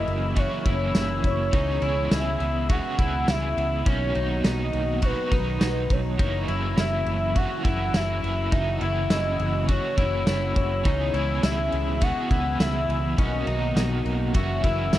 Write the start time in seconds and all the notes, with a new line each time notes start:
Already playing: F#2 C#3 E3 F#3 A#3 E4 D#5
0.07 F#1, ride
0.35 F#2 C#3 E3 F#4 C#5, kick, ride
0.39 A#3 E4
0.66 F#1 E4, kick, ride
0.95 F#1 E4, snare, ride, tambourine
1.24 F#1 C#5, kick, ride
1.51 C#2 B2 C#3 E3 G#3 B3 D#4, kick, ride
1.56 C#4 G#4
1.82 C#2 E4, ride
2.11 C#2 E4 E5, snare, ride, tambourine
2.40 C#2, ride
2.69 C#3 E3 B3 C#4 F#4 G#4 F#5, kick, ride
2.98 C#2 B3 C#4 E4 G#4, kick, ride
3.28 C#2 E4 E5, snare, ride, tambourine
3.57 C#2, ride
3.85 B1 B2 D#3 F#3 C#4 F#4 C#5, kick, ride
3.89 A#3 D#4
4.15 B1 D#4, ride
4.44 B1 D#4 D#5, snare, ride, tambourine
4.73 B1, ride
5.02 B2 F#3 A#3 D#4 F#4 B4, kick, ride
5.31 B1 F#3 D#4, kick, ride
5.61 B1 D#4, snare, ride, tambourine
5.90 B1 C#5, kick, ride
6.17 F#1 F#2 C#3 E3 F#3 D#4 E4, kick, ride
6.22 A#3 E4
6.48 F#1 E4, ride
6.77 F#1 E4 E5, snare, ride, tambourine
7.06 F#1, ride
7.35 F#2 C#3 E3 A#3 E4 F#4 F#5, kick, ride
7.63 F#1 A#3 E4, kick, ride
7.68 E3
7.94 F#1 E4 E5, snare, ride, tambourine
8.22 F#1 E3 A#3 E4, ride
8.51 F#1 F#2 C#3 E3 D#4 F#4 E5, kick, ride
8.55 A#3 E4
8.81 F#1 E4, ride
9.10 E4 D#5, snare, ride, tambourine
9.39 F#1, ride
9.68 F#2 C#3 E3 A#3 E4 F#4 C#5, kick, ride
9.97 F#1 E3 A#3 E4, kick, ride
10.27 F#1 E4, snare, ride, tambourine
10.56 F#1 C#5, kick, ride
10.83 C#2 B2 C#3 E3 G#3 B3 D#4 E4, kick, ride
10.88 C#4 G#4
11.14 C#2 E4, ride
11.43 C#2 E4 E5, snare, ride, tambourine
11.72 C#2, ride
12.00 C#3 E3 B3 F#4 F#5, kick, ride
12.05 C#4 G#4
12.31 C#2 E4, kick, ride
12.60 C#2 E4 E5, snare, ride, tambourine
12.89 C#2, ride
13.16 B1 B2 D#3 F#3 A#3 C#4 F#4 D#5, kick, ride
13.21 D#4 F#4
13.47 B1 D#4, ride
13.76 B1 D#4, snare, ride, tambourine
14.05 B1, ride
14.34 F#1 F#2 C#3 E3 A#3 C#4 F#4 E5, kick, ride
14.62 F#1 E3 A#3 C#4 E4 F#4, kick, ride
14.93 F#1 E4, snare, ride, tambourine